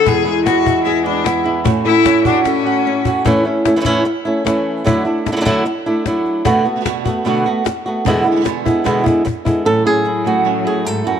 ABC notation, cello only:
X:1
M:4/4
L:1/8
Q:1/4=150
K:A
V:1 name="Cello"
G2 F2 E D E z | z E2 D C4 | z8 | z8 |
z8 | z8 | F,8 |]